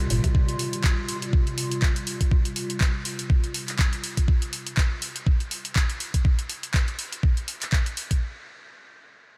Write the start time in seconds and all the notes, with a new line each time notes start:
Already playing: C3 G3 F4
0.10 G1 A#2, open hi-hat
0.24 C3, kick, closed hi-hat
0.35 kick
0.49 closed hi-hat
0.59 open hi-hat
0.73 closed hi-hat
0.84 kick, clap
1.09 open hi-hat
1.22 closed hi-hat
1.33 kick
1.47 closed hi-hat
1.58 open hi-hat
1.72 closed hi-hat
1.82 kick, clap
1.96 closed hi-hat
2.07 open hi-hat
2.21 kick, closed hi-hat
2.31 kick
2.45 closed hi-hat
2.56 open hi-hat
2.70 closed hi-hat
2.81 kick, clap
3.05 open hi-hat
3.19 closed hi-hat
3.30 kick
3.44 closed hi-hat
3.54 open hi-hat
3.68 clap, closed hi-hat
3.79 kick, clap
3.93 closed hi-hat
4.04 open hi-hat
4.17 kick, closed hi-hat
4.28 kick
4.42 closed hi-hat
4.53 open hi-hat
4.67 closed hi-hat
4.77 kick, clap
5.02 open hi-hat
5.16 closed hi-hat
5.27 kick
5.40 closed hi-hat
5.51 open hi-hat
5.65 closed hi-hat
5.76 kick, clap
5.90 closed hi-hat
6.00 open hi-hat
6.14 kick, closed hi-hat
6.25 kick
6.39 closed hi-hat
6.49 open hi-hat
6.63 closed hi-hat
6.74 kick, clap
6.88 closed hi-hat
6.99 open hi-hat
7.12 closed hi-hat
7.23 kick
7.37 closed hi-hat
7.48 open hi-hat
7.62 clap, closed hi-hat
7.72 kick, clap
7.86 closed hi-hat
7.97 open hi-hat
8.11 kick, closed hi-hat